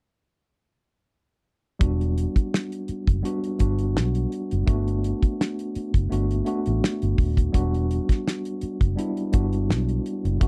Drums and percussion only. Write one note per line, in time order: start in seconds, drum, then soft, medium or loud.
1.81 kick loud
1.81 closed hi-hat medium
2.01 closed hi-hat soft
2.18 closed hi-hat medium
2.36 kick medium
2.36 closed hi-hat soft
2.54 snare loud
2.72 closed hi-hat medium
2.88 closed hi-hat medium
3.07 kick medium
3.07 closed hi-hat soft
3.25 closed hi-hat medium
3.44 closed hi-hat soft
3.59 kick medium
3.59 closed hi-hat medium
3.79 closed hi-hat soft
3.97 snare loud
4.15 closed hi-hat soft
4.32 closed hi-hat medium
4.51 closed hi-hat medium
4.67 kick medium
4.67 closed hi-hat medium
4.88 closed hi-hat soft
5.04 closed hi-hat medium
5.22 kick medium
5.22 closed hi-hat soft
5.41 snare loud
5.59 closed hi-hat soft
5.75 closed hi-hat medium
5.94 kick medium
5.94 closed hi-hat soft
6.12 closed hi-hat medium
6.31 closed hi-hat soft
6.46 closed hi-hat medium
6.66 closed hi-hat soft
6.84 snare loud
7.02 closed hi-hat soft
7.18 kick medium
7.18 open hi-hat soft
7.37 kick medium
7.37 closed hi-hat soft
7.54 kick medium
7.54 closed hi-hat medium
7.74 closed hi-hat soft
7.91 closed hi-hat medium
8.09 kick medium
8.09 snare soft
8.09 closed hi-hat soft
8.28 snare medium
8.45 closed hi-hat soft
8.61 closed hi-hat medium
8.81 kick medium
8.81 closed hi-hat soft
8.99 closed hi-hat medium
9.17 closed hi-hat soft
9.33 kick medium
9.33 closed hi-hat medium
9.53 closed hi-hat soft
9.71 snare loud
9.89 closed hi-hat soft
10.06 closed hi-hat medium
10.25 closed hi-hat soft
10.41 kick medium
10.41 closed hi-hat medium